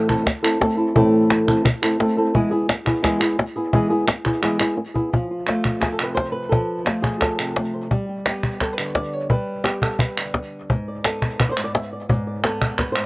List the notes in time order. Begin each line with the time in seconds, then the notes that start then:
Already playing: A2 E3
0.08 A3 C4 E4 A4, cajon bass, clap
0.25 muted nylon-string guitar stroke, cajon bass, cajon slap, clap
0.43 A3 C4 E4 A4, clap
0.60 A3 C4 E4 A4, cajon bass, cajon slap
0.77 A3 C4 E4 A4, cajon slap
0.95 A2 E3 A3 C4 E4 A4, cajon bass
1.30 cajon slap, clap
1.47 A3 C4 E4 A4, cajon bass, clap
1.64 muted nylon-string guitar stroke, cajon bass, clap
1.82 A3 C4 E4 A4, clap
1.99 A3 C4 E4 A4, cajon slap
2.17 A3 C4 E4 A4, cajon slap
2.34 E3 G#3 B3 E4 G#4, cajon bass
2.51 B3 E4 G#4
2.69 muted nylon-string guitar stroke, cajon slap, clap
2.85 B3 E4 G#4, cajon bass, clap
3.02 E3 G#3 B3 E4 G#4, cajon bass, cajon slap, clap
3.20 B3 E4 G#4, clap
3.38 muted nylon-string guitar stroke, cajon slap
3.56 B3 E4 G#4
3.73 E3 G#3 B3 E4 G#4, cajon bass
3.90 B3 E4 G#4
4.07 muted nylon-string guitar stroke, cajon slap, clap
4.25 B3 E4 G#4, cajon bass, clap
4.42 E3 G#3 B3 E4 G#4, cajon slap, clap
4.60 B3 E4 G#4, cajon slap, clap
4.77 muted nylon-string guitar stroke
4.94 B3 E4 G#4, cajon bass
5.13 F3 F4, cajon bass
5.31 F4, cajon slap
5.47 A3 F4, cajon slap, clap
5.64 cajon bass, clap
5.81 G#4, cajon bass, cajon slap, clap
5.92 A4
5.99 C3, clap
6.03 B4
6.15 C5, cajon bass, cajon slap
6.32 B4
6.49 F3 A4, cajon bass
6.84 A3 F4, cajon slap, clap
7.02 G#4, cajon bass, clap
7.20 A4, cajon bass, cajon slap, clap
7.39 C3, clap
7.56 A3, cajon slap
7.74 C5, cajon slap
7.91 G3 G4, cajon bass
8.09 G4
8.25 B3 G4, cajon slap, clap
8.43 cajon bass, clap
8.60 A4, cajon bass, cajon slap, clap
8.73 B4
8.78 D3, clap
8.85 C#5
8.95 D5, cajon bass, cajon slap
9.13 C#5
9.30 G3 B4, cajon bass
9.48 cajon slap
9.64 B3 G4, cajon slap, clap
9.82 A4, cajon bass, clap
9.99 B4, cajon bass, clap
10.18 D3, clap
10.34 cajon bass, cajon slap
10.70 G#2, cajon bass
10.88 D5
11.04 B3 A4, cajon slap, clap
11.22 cajon bass, clap
11.40 B4, cajon bass, clap
11.49 C5 D5
11.57 G#2, clap
11.64 D5
11.75 E5, cajon slap
11.93 D5
12.09 G#2 D5, cajon bass
12.27 D5, cajon slap
12.44 B3 A4, cajon slap, clap
12.62 cajon bass, clap
12.78 B4, cajon bass, cajon slap, clap
12.92 C5, clap
12.96 G#2